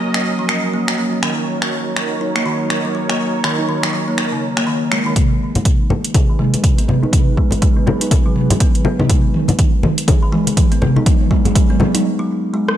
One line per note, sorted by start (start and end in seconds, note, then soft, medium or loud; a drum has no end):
0.00 5.12 F#3 medium
0.00 0.14 A#3 medium
0.00 1.19 C#4 medium
0.00 1.19 A#4 medium
0.00 1.21 D#5 medium
0.14 0.23 C#4 medium
0.14 finger snap medium
0.39 0.48 F3 medium
0.49 finger snap medium
0.74 0.87 A#3 medium
0.88 finger snap medium
0.98 1.12 A#3 medium
1.13 1.22 C#4 medium
1.23 1.37 D#3 medium
1.23 5.12 D#4 medium
1.23 5.12 A#4 medium
1.23 5.12 C#5 medium
1.23 finger snap medium
1.62 finger snap medium
1.96 finger snap medium
2.21 2.34 D#4 medium
2.36 2.41 A#3 medium
2.36 finger snap medium
2.46 2.59 D#3 medium
2.70 finger snap medium
2.85 2.94 F#3 medium
2.95 3.09 F#3 medium
3.09 3.18 A#3 medium
3.09 finger snap medium
3.44 3.57 D#3 medium
3.44 finger snap medium
3.59 3.68 D#4 medium
3.69 3.77 D#3 medium
3.83 3.92 F#3 medium
3.83 finger snap medium
3.93 4.07 F#3 medium
4.08 4.17 A#3 medium
4.18 finger snap medium
4.32 4.41 C#3 medium
4.57 4.66 A#3 loud
4.57 finger snap medium
4.67 4.75 D#3 loud
4.92 5.05 G#3 loud
4.92 finger snap medium
5.06 5.12 D#3 medium
5.16 5.48 G#1 loud
5.16 12.01 F#3 medium
5.16 12.01 D#4 medium
5.16 12.01 G#4 medium
5.16 12.01 B4 medium
5.16 kick loud
5.16 closed hi-hat medium
5.16 mid tom medium
5.55 5.62 D#2 medium
5.55 closed hi-hat soft
5.55 high conga medium
5.55 low conga medium
5.65 kick loud
5.65 closed hi-hat medium
5.65 mid tom soft
5.80 5.95 G#1 medium
5.90 high conga medium
5.90 low conga medium
6.04 6.20 G#1 loud
6.04 closed hi-hat soft
6.14 6.28 G#4 medium
6.14 kick loud
6.14 closed hi-hat medium
6.14 mid tom soft
6.14 high conga medium
6.29 6.59 G#1 medium
6.29 6.35 D#3 medium
6.39 6.52 G#3 medium
6.39 mid tom medium
6.54 closed hi-hat soft
6.54 high conga medium
6.64 7.08 D#2 medium
6.64 kick loud
6.64 closed hi-hat medium
6.64 mid tom medium
6.78 6.87 B3 medium
6.78 closed hi-hat soft
6.88 7.02 B3 medium
6.88 mid tom medium
6.88 low conga loud
7.03 7.12 D#4 medium
7.03 high conga medium
7.13 kick loud
7.13 closed hi-hat medium
7.13 mid tom medium
7.37 7.51 G#3 loud
7.37 kick medium
7.51 7.59 D#2 medium
7.51 7.61 G#4 medium
7.51 closed hi-hat soft
7.51 low conga medium
7.62 7.70 G#3 medium
7.62 kick loud
7.62 closed hi-hat medium
7.62 mid tom medium
7.77 7.85 B3 medium
7.86 8.00 B3 medium
7.86 high conga loud
7.86 low conga medium
8.01 8.17 G#1 loud
8.01 8.10 D#4 medium
8.01 closed hi-hat soft
8.11 kick loud
8.11 closed hi-hat medium
8.11 mid tom medium
8.11 high conga loud
8.26 8.35 F#3 medium
8.36 mid tom medium
8.50 closed hi-hat soft
8.50 low conga loud
8.60 8.74 B3 medium
8.60 kick loud
8.60 closed hi-hat medium
8.60 mid tom medium
8.75 closed hi-hat soft
8.85 8.99 B3 medium
8.85 high conga loud
8.99 9.09 D#4 medium
8.99 mid tom medium
8.99 low conga medium
9.09 9.23 G#3 medium
9.09 kick loud
9.09 closed hi-hat medium
9.09 mid tom medium
9.34 mid tom medium
9.48 9.56 D#2 medium
9.48 closed hi-hat soft
9.48 high conga medium
9.48 low conga medium
9.59 kick loud
9.59 closed hi-hat medium
9.59 mid tom medium
9.73 9.89 G#1 medium
9.83 mid tom medium
9.83 high conga medium
9.83 low conga medium
9.98 closed hi-hat soft
10.08 10.21 G#4 medium
10.08 kick loud
10.08 closed hi-hat medium
10.08 mid tom medium
10.08 high conga loud
10.23 10.28 D#3 medium
10.32 10.46 G#3 loud
10.32 mid tom medium
10.47 closed hi-hat soft
10.47 high conga medium
10.57 11.01 D#2 medium
10.57 kick loud
10.57 closed hi-hat medium
10.57 mid tom medium
10.72 10.80 B3 medium
10.72 closed hi-hat soft
10.82 10.96 B3 medium
10.82 mid tom medium
10.82 low conga loud
10.96 11.05 D#4 medium
10.96 high conga medium
11.06 kick loud
11.06 closed hi-hat medium
11.06 mid tom medium
11.21 mid tom medium
11.31 11.44 G#3 loud
11.31 kick medium
11.31 mid tom medium
11.45 11.55 G#4 medium
11.45 closed hi-hat soft
11.45 mid tom medium
11.45 low conga medium
11.55 11.63 G#3 loud
11.55 kick loud
11.55 closed hi-hat medium
11.55 mid tom loud
11.70 11.79 B3 medium
11.70 mid tom medium
11.80 11.94 B3 medium
11.80 mid tom loud
11.80 high conga medium
11.80 low conga medium
11.94 12.04 D#4 medium
11.94 closed hi-hat soft
11.94 mid tom medium
12.19 12.28 F#3 medium
12.54 12.68 G#3 medium
12.69 cross-stick medium